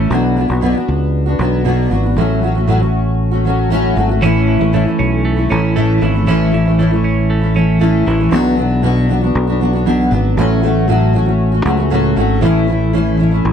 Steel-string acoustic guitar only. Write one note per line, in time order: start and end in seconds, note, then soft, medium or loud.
0.00 0.11 E3 medium
0.00 0.11 A3 medium
0.00 0.11 C#4 medium
0.00 0.12 E4 medium
0.10 0.36 B2 medium
0.10 0.35 F#3 medium
0.10 0.36 B3 medium
0.10 0.37 D4 medium
0.10 0.37 F#4 medium
0.36 0.49 F#3 medium
0.36 0.50 B3 medium
0.36 0.49 D4 medium
0.36 0.47 F#4 medium
0.48 0.61 B3 medium
0.48 0.62 D4 soft
0.48 0.62 F#4 medium
0.61 0.75 B2 medium
0.61 0.75 F#3 medium
0.61 0.75 B3 loud
0.61 0.74 D4 medium
0.61 0.73 F#4 medium
0.74 1.28 B3 soft
0.74 1.26 D4 medium
0.74 1.25 F#4 medium
1.26 1.38 B3 soft
1.26 1.39 D4 medium
1.26 1.39 F#4 medium
1.39 1.64 F#3 medium
1.39 1.64 B3 medium
1.39 1.65 D4 medium
1.39 1.65 F#4 medium
1.65 1.91 B2 medium
1.65 1.89 F#3 medium
1.65 1.90 B3 medium
1.65 1.91 D4 medium
1.65 1.91 F#4 medium
1.90 2.03 F#3 medium
1.90 2.04 B3 medium
1.90 2.04 D4 medium
1.90 2.02 F#4 medium
2.03 2.17 B3 soft
2.03 2.17 D4 soft
2.03 2.16 F#4 medium
2.16 2.42 A2 medium
2.16 2.40 F#3 medium
2.16 2.41 A3 medium
2.16 2.42 C#4 medium
2.16 2.43 F#4 medium
2.41 2.55 F#3 medium
2.41 2.55 A3 medium
2.41 2.55 C#4 medium
2.41 2.54 F#4 medium
2.55 2.67 A3 medium
2.55 2.67 C#4 medium
2.55 2.68 F#4 medium
2.67 2.80 A2 medium
2.67 2.81 F#3 medium
2.67 2.81 A3 medium
2.67 2.80 C#4 medium
2.67 2.79 F#4 loud
2.80 3.34 A3 soft
2.80 3.32 C#4 medium
2.80 3.30 F#4 medium
3.31 3.45 A3 medium
3.31 3.45 C#4 medium
3.31 3.45 F#4 medium
3.45 3.70 F#3 medium
3.45 3.70 A3 medium
3.45 3.70 C#4 medium
3.45 3.71 F#4 medium
3.70 3.96 A2 medium
3.70 3.94 F#3 medium
3.70 3.95 A3 medium
3.70 3.96 C#4 loud
3.70 3.97 F#4 loud
3.95 4.09 F#3 medium
3.95 4.09 A3 medium
3.95 4.09 C#4 medium
3.95 4.08 F#4 medium
4.09 4.22 A3 soft
4.09 4.22 C#4 soft
4.09 4.22 F#4 medium
4.22 4.60 A2 medium
4.22 4.61 E3 medium
4.22 4.60 A3 medium
4.22 4.59 C#4 loud
4.22 4.58 E4 loud
4.59 4.72 A3 medium
4.59 4.73 C#4 medium
4.59 4.73 E4 medium
4.72 4.86 A2 medium
4.72 4.86 E3 medium
4.72 4.86 A3 medium
4.72 4.86 C#4 medium
4.72 4.84 E4 medium
4.85 5.38 A3 medium
4.85 5.37 C#4 medium
4.85 5.35 E4 medium
5.37 5.49 A3 soft
5.37 5.50 C#4 medium
5.37 5.50 E4 medium
5.49 5.75 E3 medium
5.49 5.76 A3 medium
5.49 5.76 C#4 medium
5.49 5.76 E4 medium
5.76 6.02 A2 medium
5.76 6.00 E3 medium
5.76 6.00 A3 medium
5.76 6.01 C#4 medium
5.76 6.02 E4 medium
6.01 6.14 E3 medium
6.01 6.14 A3 medium
6.01 6.14 C#4 medium
6.01 6.12 E4 medium
6.14 6.27 A3 soft
6.14 6.27 C#4 medium
6.14 6.27 E4 medium
6.26 6.52 A2 medium
6.26 6.51 E3 medium
6.26 6.52 A3 medium
6.26 6.53 C#4 loud
6.26 6.54 E4 loud
6.52 6.65 E3 medium
6.52 6.66 A3 medium
6.52 6.66 C#4 medium
6.52 6.64 E4 medium
6.66 6.79 A3 soft
6.66 6.79 C#4 medium
6.66 6.79 E4 medium
6.79 6.92 A2 medium
6.79 6.92 E3 medium
6.79 6.92 A3 medium
6.79 6.92 C#4 medium
6.79 6.90 E4 medium
6.91 7.43 A3 soft
6.91 7.42 C#4 medium
6.91 7.41 E4 medium
7.42 7.54 A3 soft
7.42 7.55 C#4 medium
7.42 7.55 E4 medium
7.54 7.79 E3 medium
7.54 7.80 A3 medium
7.54 7.80 C#4 medium
7.54 7.81 E4 medium
7.79 8.06 A2 medium
7.79 8.04 E3 medium
7.79 8.05 A3 medium
7.79 8.06 C#4 medium
7.79 8.07 E4 medium
8.05 8.19 E3 medium
8.05 8.19 A3 medium
8.05 8.19 C#4 medium
8.05 8.17 E4 medium
8.18 8.32 A3 medium
8.18 8.32 C#4 medium
8.18 8.32 E4 medium
8.31 8.57 B2 medium
8.31 8.55 F#3 loud
8.31 8.56 B3 medium
8.31 8.57 D4 medium
8.31 8.58 F#4 loud
8.57 8.82 F#3 medium
8.57 8.82 B3 medium
8.57 8.83 D4 medium
8.57 8.83 F#4 medium
8.82 9.09 B2 medium
8.82 9.07 F#3 medium
8.82 9.09 B3 medium
8.82 9.09 D4 medium
8.82 9.10 F#4 loud
9.09 9.22 F#3 medium
9.09 9.22 B3 medium
9.09 9.22 D4 medium
9.09 9.20 F#4 medium
9.21 9.49 B3 medium
9.21 9.48 D4 medium
9.21 9.46 F#4 medium
9.47 9.60 B3 medium
9.47 9.61 D4 medium
9.47 9.60 F#4 medium
9.60 9.73 F#3 medium
9.60 9.74 B3 medium
9.60 9.73 D4 medium
9.60 9.72 F#4 medium
9.73 9.86 B3 medium
9.73 9.86 D4 medium
9.73 9.86 F#4 medium
9.86 10.12 B2 medium
9.86 10.10 F#3 medium
9.86 10.11 B3 medium
9.86 10.12 D4 medium
9.86 10.13 F#4 medium
10.11 10.36 F#3 medium
10.11 10.37 B3 medium
10.11 10.38 D4 medium
10.11 10.38 F#4 medium
10.37 10.63 A2 medium
10.37 10.61 F#3 medium
10.37 10.62 A3 medium
10.37 10.63 C#4 loud
10.37 10.64 F#4 loud
10.62 10.87 F#3 medium
10.62 10.87 A3 medium
10.62 10.88 C#4 medium
10.62 10.88 F#4 medium
10.88 11.14 A2 medium
10.88 11.12 F#3 medium
10.88 11.13 A3 medium
10.88 11.14 C#4 medium
10.88 11.15 F#4 loud
11.13 11.27 F#3 medium
11.13 11.27 A3 medium
11.13 11.26 C#4 medium
11.13 11.25 F#4 medium
11.26 11.53 A3 medium
11.26 11.52 C#4 medium
11.26 11.51 F#4 medium
11.52 11.64 A3 medium
11.52 11.65 C#4 medium
11.52 11.65 F#4 medium
11.65 11.78 F#3 medium
11.65 11.78 A3 medium
11.65 11.77 C#4 medium
11.65 11.76 F#4 medium
11.77 11.90 A3 medium
11.77 11.91 C#4 medium
11.77 11.91 F#4 medium
11.90 12.16 A2 medium
11.90 12.15 F#3 medium
11.90 12.16 A3 medium
11.90 12.16 C#4 medium
11.90 12.17 F#4 medium
12.16 12.41 F#3 medium
12.16 12.41 A3 medium
12.16 12.41 C#4 medium
12.16 12.43 F#4 medium
12.41 12.67 A2 loud
12.41 12.66 E3 medium
12.41 12.67 A3 loud
12.41 12.68 C#4 loud
12.41 12.69 E4 loud
12.67 12.92 E3 medium
12.67 12.93 A3 medium
12.67 12.93 C#4 medium
12.67 12.94 E4 medium
12.93 13.19 A2 medium
12.93 13.16 E3 medium
12.93 13.18 A3 medium
12.93 13.18 C#4 medium
12.93 13.19 E4 medium
13.17 13.31 E3 medium
13.17 13.32 A3 medium
13.17 13.31 C#4 medium
13.17 13.30 E4 medium
13.31 13.53 A3 medium
13.31 13.53 C#4 medium
13.31 13.53 E4 medium